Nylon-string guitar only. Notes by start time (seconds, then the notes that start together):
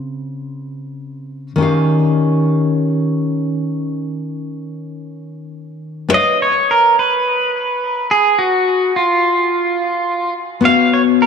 Already playing: C#3 C4 F4 D#5
1.56 D#3 C#4
1.60 G4 F5
6.09 B3 B4 C#5
6.15 F5
10.61 B3 F#4 C#5
10.67 F5